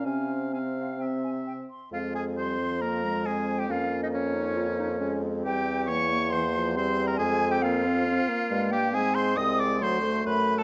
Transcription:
X:1
M:4/4
L:1/16
Q:1/4=136
K:Fm
V:1 name="Flute"
a4 a2 f2 g2 a2 g2 c'2 | f2 a2 c'4 b4 a3 g | f3 e d8- d2 z2 | g4 d'4 c'4 c'3 b |
a3 g f8- f2 g2 | [K:Ablyd] a2 c'2 e'2 d'2 c'4 =b3 =a |]
V:2 name="Oboe"
f4 f4 =e6 z2 | F2 A2 c4 B4 A3 G | F3 E D8- D2 z2 | G4 d4 c4 c3 B |
A3 G F8- F2 G2 | [K:Ablyd] A2 c2 e2 d2 c4 =B3 =A |]
V:3 name="Clarinet"
D4 C8- C2 z2 | C8 B,2 A,6 | D4 D2 E2 F2 E2 D2 C2- | C4 B,2 B,6 C4 |
C8- C2 z2 A,2 B,2 | [K:Ablyd] C4 C4 =A,8 |]
V:4 name="French horn" clef=bass
C4 C4 C6 z2 | A,4 G,2 F,6 C4 | B,12 A,4 | G,4 =E,4 E,2 F,2 G,4 |
A,4 B,2 C2 C2 B,4 z2 | [K:Ablyd] A,4 A,4 ^F,2 =A,2 A,4 |]
V:5 name="Bassoon" clef=bass
C,12- C,2 z2 | F,,16 | F,,16 | =E,,16 |
F,,8- F,,2 z2 G,,4 | [K:Ablyd] A,,4 C,,4 D,,4 ^F,,4 |]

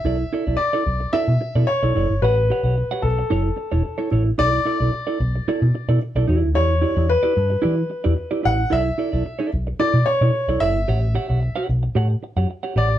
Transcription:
X:1
M:4/4
L:1/16
Q:1/4=111
K:Bm
V:1 name="Grand piano"
e4 d4 e4 c4 | B6 A8 z2 | d12 z4 | c4 B8- B2 f2 |
e6 z2 d2 c4 e2- | e6 z8 d2 |]
V:2 name="Clean electric guitar"
[EAd] z [EAd] [EAd] z [EAd] z2 [EAd] z2 [EAd] z [EAd] [EAd] z | [Gcf] z [Gcf] [Gcf] z [Gcf] z2 [EAc] z2 [EAc] z [EAc] [EAc] z | [EAd] z [EAd] [EAd] z [EAd] z2 [EAd] z2 [EAd] z [EAd] [EGd] z | [EGd] z [EGd] [EGd] z [EGd] z2 [EGd] z2 [EGd] z [EGd] [EGd] z |
[EAd] z [EAd] [EAd] z [EAd] z2 [EAd] z2 [EAd] z [EAd] [EAd] z | [Gcf] z [Gcf] [Gcf] z [Gcf] z2 [Gcf] z2 [Gcf] z [Gcf] [Gcf] z |]
V:3 name="Picked electric bass" clef=bass
B,,,2 z B,,, z2 B,,,2 z B,, z B,, z B,,, F,,, G,,, | A,,,3 B,,,2 z B,,,2 F,,,2 z E,,, z2 A,,,2 | B,,,2 z B,,, z2 B,,,2 z B,, z B,, z B,,, E,, D,, | E,,3 E,,2 z G,,2 E,2 z E,, z2 A,,,2 |
B,,,2 z B,,, z2 B,,,2 z B,, z B,, z B,,, F,,, G,,, | A,,,3 B,,,2 z B,,,2 A,,2 z F,, z2 A,,,2 |]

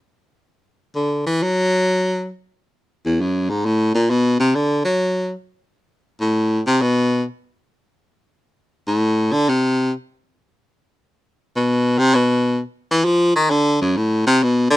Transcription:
X:1
M:3/4
L:1/16
Q:"Swing" 1/4=134
K:Dmix
V:1 name="Baritone saxophone" clef=bass
z8 D,2 E,2 | F,8 z4 | z2 E,,2 F,,2 ^G,,2 A,,2 _B,,2 | B,,2 C,2 D,2 F,4- F, z |
z6 A,,4 C,2 | B,,4 z8 | z6 A,,4 D,2 | C,4 z8 |
z6 B,,4 C,2 | B,,4 z2 E,2 =F,2 _E,2 | D,2 F,,2 A,,2 C,2 B,,2 D,2 |]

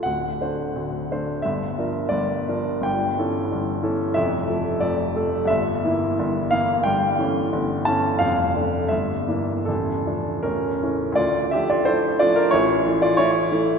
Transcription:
X:1
M:2/4
L:1/16
Q:1/4=88
K:Dm
V:1 name="Grand piano"
^f8 | e4 d4 | g8 | e4 d4 |
e6 f2 | g6 a2 | f4 e4 | A4 [^CB]4 |
[Fd]2 [Ge] [Fd] [Ec]2 [Fd] [DB] | [E^c]3 [Fd] [Ec]4 |]
V:2 name="Grand piano" clef=bass
[D,,,D,,]2 [A,Dc]2 [D,,,D,,]2 [A,Dc]2 | [G,,,G,,]2 [F,DB]2 [G,,,G,,]2 [F,DB]2 | [G,,,G,,]2 [E,^CA]2 [G,,,G,,]2 [E,CA]2 | [F,,,F,,]2 [F,A,A]2 [F,,,F,,]2 [F,A,A]2 |
[G,,,G,,]2 [E,B,E]2 [G,,,G,,]2 [E,B,E]2 | [G,,,G,,]2 [E,A,^C]2 [G,,,G,,]2 [E,A,C]2 | [F,,,F,,]2 [D,A,D]2 [G,,,G,,]2 [E,B,D]2 | [A,,,,A,,,]2 [F,A,D]2 [A,,,,A,,,]2 [E,A,^C]2 |
D,,2 [F,A,D]2 [F,A,D]2 [F,A,D]2 | A,,,2 [E,A,E]2 [E,A,]2 [E,A,E]2 |]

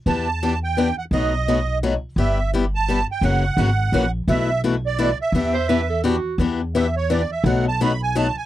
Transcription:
X:1
M:3/4
L:1/16
Q:"Swing" 1/4=170
K:Em
V:1 name="Accordion"
a6 g4 f2 | ^d8 z4 | e4 z2 a4 g2 | f8- f2 z2 |
e4 z2 d4 e2- | e8 z4 | z4 e2 ^c2 d2 e2 | f2 a2 b2 ^g2 a2 g2 |]
V:2 name="Clarinet"
z12 | z12 | z12 | z12 |
z12 | z2 c2 B2 A2 F4 | z12 | z12 |]
V:3 name="Steel-string acoustic guitar"
[E,B,DG]2 z2 [E,B,DG] z3 [E,B,DG] z3 | [B,,F,A,^DF]2 z2 [B,,F,A,DF] z3 [B,,F,A,DF] z3 | [G,B,EG]2 z2 [G,B,EG] z3 [G,B,EG] z3 | [^C,E,^A,^CF]2 z2 [C,E,A,CF] z3 [C,E,A,CF] z3 |
[B,,E,A,EF]2 z2 [B,,E,A,EF] z3 [B,,E,A,EF] z3 | [E,B,DG]2 z2 [E,B,DG] z3 [E,B,DG] z3 | [E,B,DG]2 z2 [E,B,DG] z3 [E,B,DG] z3 | [B,,F,A,^DF]2 z2 [B,,F,A,DF] z3 [B,,F,A,DF] z3 |]
V:4 name="Upright bass" clef=bass
E,,12 | B,,,12 | G,,,12 | F,,,4 ^G,,,4 ^A,,,4 |
B,,,12 | E,,12 | E,,12 | B,,,12 |]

